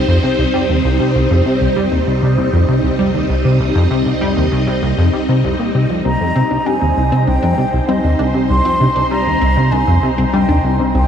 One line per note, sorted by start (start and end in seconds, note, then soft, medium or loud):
0.00 6.02 C2 medium
0.00 11.08 G3 loud
0.00 11.08 C4 medium
0.00 11.08 D#4 medium
0.00 1.73 C5 medium
0.08 0.19 F2 loud
0.23 0.35 C3 medium
0.39 0.45 C2 medium
0.54 0.65 G3 loud
0.69 0.81 D#2 medium
0.85 0.99 C2 loud
1.00 1.14 C3 medium
1.15 1.27 C2 loud
1.31 1.42 F2 loud
1.46 1.57 C3 medium
1.61 1.68 C2 medium
1.70 6.63 D#5 medium
1.76 1.88 G3 loud
1.92 2.03 D#2 medium
2.07 2.22 C2 loud
2.22 2.37 C3 medium
2.38 2.49 C2 loud
2.53 2.64 F2 loud
2.68 2.80 C3 medium
2.84 2.90 C2 medium
2.99 3.10 G3 medium
3.14 3.25 D#2 medium
3.29 3.44 C2 loud
3.45 3.59 C3 medium
3.60 3.71 C2 loud
3.75 3.87 F2 loud
3.91 4.02 C3 medium
4.06 4.13 C2 medium
4.21 4.33 G3 medium
4.37 4.48 D#2 medium
4.52 4.66 C2 loud
4.67 4.82 C3 medium
4.83 4.94 C2 loud
4.98 5.09 F2 loud
5.13 5.20 G3 medium
5.29 5.43 C3 medium
5.44 5.55 C2 loud
5.59 5.70 A#2 medium
5.74 5.86 C3 medium
5.90 6.01 F2 medium
6.05 11.08 C2 medium
6.05 6.16 C2 loud
6.05 6.17 C4 medium
6.05 6.68 A#5 loud
6.20 6.32 F2 loud
6.36 6.42 C3 loud
6.36 6.50 C4 loud
6.51 6.58 C2 medium
6.51 6.65 D4 medium
6.60 11.08 C5 medium
6.66 6.78 G3 loud
6.66 6.78 D4 loud
6.66 7.27 G#5 loud
6.82 6.93 D#2 medium
6.82 6.94 C4 medium
6.97 7.11 C2 loud
7.12 7.27 C3 medium
7.12 7.27 C4 loud
7.27 7.39 C2 loud
7.27 7.41 D4 medium
7.27 7.90 G5 loud
7.43 7.54 F2 loud
7.43 7.55 D4 loud
7.58 7.65 C3 loud
7.58 7.70 C4 medium
7.73 7.80 C2 medium
7.88 8.00 G3 medium
7.88 8.03 C4 loud
7.88 8.34 D#5 medium
8.04 8.15 D#2 medium
8.04 8.18 D4 medium
8.19 8.34 C2 loud
8.19 8.31 D4 loud
8.34 8.49 C3 medium
8.34 8.47 C4 medium
8.50 8.61 C2 loud
8.50 9.07 C6 loud
8.65 8.77 F2 loud
8.65 8.80 C4 loud
8.80 8.87 C3 loud
8.80 8.95 D4 medium
8.96 9.03 C2 medium
8.96 9.08 D4 loud
9.11 9.22 G3 loud
9.11 9.23 C4 medium
9.11 9.73 A#5 loud
9.27 9.38 D#2 medium
9.41 9.56 C2 loud
9.41 9.56 C4 loud
9.57 9.72 C3 medium
9.57 9.71 D4 medium
9.72 9.84 C2 loud
9.72 9.84 D4 loud
9.72 10.06 G#5 loud
9.87 9.99 F2 loud
9.87 10.00 C4 medium
10.03 10.10 C3 loud
10.18 10.25 C2 medium
10.18 10.33 C4 loud
10.33 10.45 G3 loud
10.33 10.47 D4 medium
10.33 10.76 G5 loud
10.49 10.60 D#2 medium
10.49 10.61 D4 loud
10.64 10.79 C2 loud
10.64 10.76 C4 medium
10.79 10.94 C3 medium
10.94 11.06 C2 loud
10.94 11.08 C4 loud
10.94 11.08 G5 loud